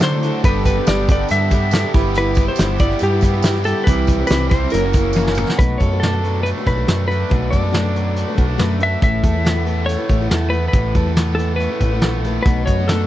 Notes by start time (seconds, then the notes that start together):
Already playing: D3 E4 F#4 D5 F#5 E6
0.00 D3 F#3 A3 D4 E4 F#4 A4 C5, snare, closed hi-hat, tambourine
0.13 A3 D4 E4 A4
0.22 A3 D4 E4 F#4 A4, closed hi-hat
0.43 G1 G2 D3 G3 B3 D4 G4 A4 B4 G5 B5, kick, closed hi-hat, tambourine
0.65 G3 B3 D4 G4 B4, kick, closed hi-hat, tambourine
0.76 D4 G4 A4
0.87 G1 G3 B3 D4 G4 A4 D5, snare, closed hi-hat, tambourine
1.09 G2 D3 G3 B3 D4 G4 A4 D5, kick, closed hi-hat, tambourine
1.18 D4 G4 A4
1.29 G2 G3 B3 E5, closed hi-hat, tambourine
1.33 D4 G4
1.40 D4 G4 A4
1.50 B3 D4 G4 A4, kick, closed hi-hat, tambourine
1.55 G3
1.71 G2 D3 G3 B3 D4 G4 A4, snare, closed hi-hat, tambourine
1.83 D4 G4 A4
1.94 G1 G3 B3 E4 G4 B4 E5 B5, kick, closed hi-hat
2.14 G3 B3 E4 B4, closed hi-hat, tambourine
2.18 G4 B4
2.35 G4, kick, closed hi-hat, tambourine
2.39 B3 E4
2.48 E4 G4 B4 C5
2.56 G1, snare, closed hi-hat, tambourine
2.60 G3 B3 E4 G4 B4
2.78 G3 B3 E4 G4 B4 D5, kick, closed hi-hat, tambourine
2.91 snare
2.99 G2 G3 B3, closed hi-hat, tambourine
3.03 E4 G4
3.12 E4 G4 B4
3.21 G3 E4 G4, kick, closed hi-hat, tambourine
3.25 B3 B4
3.33 E4 G4 B4
3.43 G3 B3 E4 G4 B4, snare, closed hi-hat, tambourine
3.55 E4 G4 B4, snare
3.64 G3 E4 G4 A4, closed hi-hat, tambourine
3.68 B3 B4
3.84 C2 C3 E3 G3 C4 G4 B4, kick, closed hi-hat, tambourine
3.88 C4 E4 G4 G5
4.07 G3 E4 G4, kick, closed hi-hat, tambourine
4.19 G3 C4 E4 C5
4.27 C2 C3 E3 B4, snare, closed hi-hat, tambourine
4.31 G3 C4 E4 G4 C5
4.49 C3 E3 G3 C4 G4 C5, kick, closed hi-hat, tambourine
4.54 E4 C5
4.63 G3 C4 E4 C5
4.70 F#1 F#2 C#3 F#3 A#3 C#4 E4 F#4 A#4 F#5 E6, closed hi-hat, tambourine
4.75 E3 F#4 A#4
4.84 C#4 E4 A#4
4.93 A#3 C#4 E4 F#4 A#4, kick, closed hi-hat, tambourine
4.99 E3
5.13 F#2 C#3 F#3 A#3 E4, high tom, tambourine
5.17 E3 C#4 F#4 A#4
5.27 C#4 E4 A#4, snare
5.35 A#3 F#4, mid tom, tambourine
5.39 E3 C#4 E4 A#4
5.49 snare
5.59 B1 B2 F#3 A3 D4 F#4 B4, kick, closed hi-hat
5.78 F#2 A4 C#5, kick, closed hi-hat
5.92 A3 D4 F#4 B4
6.00 B2 F#3 A3 D4 F#4 A4 B4, snare, closed hi-hat
6.13 A3 D4 F#4 B4
6.22 F#3 A3 D4 F#4 B4, closed hi-hat
6.43 A3 B4, closed hi-hat
6.57 A3 D4 F#4 B4
6.67 B1 A3 D4 F#4 B4, kick, closed hi-hat
6.76 A3 D4 F#4 B4
6.86 F#2 B2 F#3 A3 D4 F#4 B4, snare, closed hi-hat
7.08 A3 D4 F#4 B4, closed hi-hat
7.28 B1 B2 F#3 A3 D4 F#4 B4, kick, closed hi-hat
7.33 B2
7.51 F#2 A4 D5, kick, closed hi-hat
7.63 A3 D4 F#4 B4
7.71 B2 F#3 A3 D4 F#4 B4, snare, closed hi-hat
7.83 A3 D4 F#4 B4
7.95 F#3 A3 D4 F#4 B4, closed hi-hat
8.16 A3, closed hi-hat
8.27 A3 D4 F#4 B4
8.36 B1 A3 D4 F#4 B4, kick, closed hi-hat
8.48 A3 D4 F#4 B4
8.58 F#2 B2 F#3 A3 D4 F#4 B4, snare, closed hi-hat
8.79 A3 D4 F#4 B4, closed hi-hat
8.83 E5
9.02 A1 A2 E3 A3 E4 A4 B4 E5, kick, closed hi-hat
9.24 E2 A4, kick, closed hi-hat
9.34 A3 E4 A4 B4
9.44 A2 E3 A3 B3 E4 A4 B4, snare, closed hi-hat
9.56 A3 E4 A4 B4
9.65 E3 A3 E4 A4 B4, closed hi-hat
9.86 A3 C#5, closed hi-hat
9.98 A3 E4 A4 B4
10.09 A1 A3 B3 E4 A4 B4, kick, closed hi-hat
10.21 A3 E4 A4 B4
10.30 E2 A2 E3 A3 E4 A4 B4, snare, closed hi-hat
10.50 A3 B3 E4 A4 B4, closed hi-hat
10.68 B4
10.73 A1 A2 E3 A3 E4 A4 B4, kick, closed hi-hat
10.95 E2 A4, kick, closed hi-hat
11.07 A3 E4 A4 B4
11.16 A2 E3 A3 B3 E4 A4 B4, snare, closed hi-hat
11.35 E3 A3 E4 A4 B4
11.39 closed hi-hat
11.56 A3 B4, closed hi-hat
11.71 A3 E4 A4 B4
11.80 A1 A3 B3 E4 A4 B4, kick, closed hi-hat
11.92 A3 E4 A4 B4
12.01 A#1 A2 E3 A3 E4 A4 B4, snare, closed hi-hat
12.24 A3 B3 E4 A4 B4, closed hi-hat
12.43 B1 B2 F#3 A3 D4 B4, kick, closed hi-hat
12.47 F#4 B4
12.66 F#2 F#4 C#5, kick, closed hi-hat
12.78 A3 D4 F#4 B4
12.88 B2 D4 A4, snare, closed hi-hat
12.92 F#3 A3 D4 F#4 B4